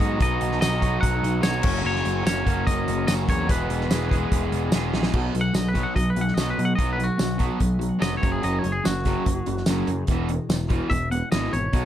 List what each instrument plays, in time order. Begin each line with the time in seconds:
Already playing: overdriven electric guitar B2 F#3, clean electric guitar D#5
0.00 picked electric bass G#2, overdriven electric guitar B3 D#4 F#4, kick, closed hi-hat
0.18 picked electric bass B1, overdriven electric guitar B2 F#3 B3 D#4 F#4, kick, closed hi-hat
0.22 clean electric guitar D#5
0.41 picked electric bass B1, closed hi-hat
0.52 snare
0.59 picked electric bass B1, overdriven electric guitar F#3 B3 D#4, clean electric guitar D#5, snare, closed hi-hat, tambourine
0.63 overdriven electric guitar F#4
0.79 overdriven electric guitar B3 D#4 F#4, kick, closed hi-hat
1.01 picked electric bass B1, clean electric guitar F#5, kick, closed hi-hat
1.23 picked electric bass B1, closed hi-hat
1.41 picked electric bass B1, overdriven electric guitar B2 F#3 B3 D#4 F#4, clean electric guitar C#5, snare, closed hi-hat, tambourine
1.62 picked electric bass F#1, overdriven electric guitar C#3 F#3 A#3 C#4 F#4, kick, crash
1.66 overdriven electric guitar F#2
1.81 picked electric bass F#1, overdriven electric guitar F#2 C#3 F#3 A#3 C#4
1.85 overdriven electric guitar F#4, clean electric guitar C#5
1.96 snare
2.05 picked electric bass F#1, closed hi-hat
2.24 picked electric bass F#1, overdriven electric guitar F#3 A#3 C#4 F#4, clean electric guitar C#5, snare, closed hi-hat, tambourine
2.44 picked electric bass F#1, overdriven electric guitar F#3 A#3 C#4 F#4, kick, closed hi-hat
2.67 picked electric bass F#1, clean electric guitar D#5, kick, closed hi-hat
2.88 picked electric bass F#1, closed hi-hat
3.07 picked electric bass F#1, overdriven electric guitar F#2 C#3 F#3 A#3 C#4 F#4, clean electric guitar D#5, snare, closed hi-hat, tambourine
3.27 picked electric bass E2, overdriven electric guitar F#3 A#3 C#4 F#4, clean electric guitar C#5, kick, closed hi-hat
3.47 picked electric bass E1, overdriven electric guitar E2 B2 E3 G#3 B3 G#4, clean electric guitar B4, kick, closed hi-hat
3.69 picked electric bass E1, closed hi-hat
3.81 snare
3.89 picked electric bass E1, overdriven electric guitar E3 G#3 B3 G#4, snare, closed hi-hat, tambourine
4.09 overdriven electric guitar E3 G#3 B3 G#4, kick, closed hi-hat
4.32 picked electric bass E1, kick, closed hi-hat
4.52 picked electric bass E1, closed hi-hat
4.72 picked electric bass E1, overdriven electric guitar E2 B2 E3 G#3 B3 G#4, snare, closed hi-hat, tambourine
4.94 picked electric bass A#1, overdriven electric guitar E3 G#3 B3 G#4, snare
5.03 snare
5.13 picked electric bass B1, overdriven electric guitar B2 F#3 B3, kick, crash
5.34 picked electric bass B1, overdriven electric guitar B2 F#3, closed hi-hat
5.41 clean electric guitar F#5
5.54 picked electric bass B1, overdriven electric guitar B2 F#3, clean electric guitar D#5, snare, closed hi-hat, tambourine
5.68 clean electric guitar B4
5.74 overdriven electric guitar B2 F#3 B3, kick, snare, closed hi-hat
5.83 clean electric guitar F#5
5.95 picked electric bass B1, overdriven electric guitar B2 F#3, clean electric guitar D#5, kick, closed hi-hat
6.10 clean electric guitar B4
6.16 picked electric bass B1, overdriven electric guitar B2 F#3, closed hi-hat
6.21 clean electric guitar F#5
6.28 snare
6.34 picked electric bass B1, overdriven electric guitar B2 F#3 B3, clean electric guitar D#5, snare, closed hi-hat, tambourine
6.50 clean electric guitar B4
6.58 overdriven electric guitar B2 F#3, picked electric bass B2, closed hi-hat
6.65 clean electric guitar F#5
6.75 picked electric bass B1, overdriven electric guitar B2 F#3 B3, clean electric guitar D#5, kick, closed hi-hat
6.93 clean electric guitar B4
6.97 overdriven electric guitar B2 F#3, closed hi-hat
7.04 clean electric guitar F#4
7.18 picked electric bass B1, overdriven electric guitar B2 F#3, snare, closed hi-hat, tambourine
7.38 overdriven electric guitar B2 F#3 B3, kick, closed hi-hat
7.59 picked electric bass B1, overdriven electric guitar B2 F#3, kick, closed hi-hat
7.79 overdriven electric guitar B2 F#3, closed hi-hat
7.99 picked electric bass F1, overdriven electric guitar B2 F#3 B3, clean electric guitar D#5, snare, closed hi-hat, tambourine
8.17 clean electric guitar C#5
8.22 picked electric bass F#1, overdriven electric guitar F#2 C#3 F#3, kick, closed hi-hat
8.32 clean electric guitar G#4
8.42 picked electric bass F#1, overdriven electric guitar F#2 C#3 F#3, clean electric guitar D#5, closed hi-hat
8.59 overdriven electric guitar F#2, clean electric guitar C#5
8.64 picked electric bass F#1, overdriven electric guitar C#3, closed hi-hat
8.72 clean electric guitar G#4
8.84 picked electric bass F#1, overdriven electric guitar F#2 C#3, clean electric guitar F#4, snare, closed hi-hat, tambourine
9.05 overdriven electric guitar F#2 C#3 F#3, kick, snare, closed hi-hat
9.25 picked electric bass F#1, overdriven electric guitar F#2 C#3, kick, closed hi-hat
9.46 picked electric bass F#1, overdriven electric guitar F#2 C#3, closed hi-hat
9.57 snare
9.66 picked electric bass F#1, overdriven electric guitar F#2 C#3 F#3, snare, closed hi-hat, tambourine
9.87 picked electric bass F#2, overdriven electric guitar F#2 C#3, closed hi-hat
10.07 picked electric bass E1, overdriven electric guitar E2 B2 E3, kick, closed hi-hat
10.29 overdriven electric guitar E2 B2, closed hi-hat
10.49 picked electric bass E1, overdriven electric guitar E2 B2, snare, closed hi-hat, tambourine
10.68 overdriven electric guitar E2 B2 E3, kick, closed hi-hat
10.89 picked electric bass E1, overdriven electric guitar E2 B2, clean electric guitar E5, kick, closed hi-hat
11.11 overdriven electric guitar E2 B2, clean electric guitar F#5, closed hi-hat
11.32 picked electric bass G#1, overdriven electric guitar E2 B2 E3, clean electric guitar D#5, snare, closed hi-hat, tambourine
11.52 picked electric bass G#1, overdriven electric guitar E2 B2, clean electric guitar C#5, closed hi-hat
11.73 picked electric bass B1, overdriven electric guitar B2 F#3 B3, kick, closed hi-hat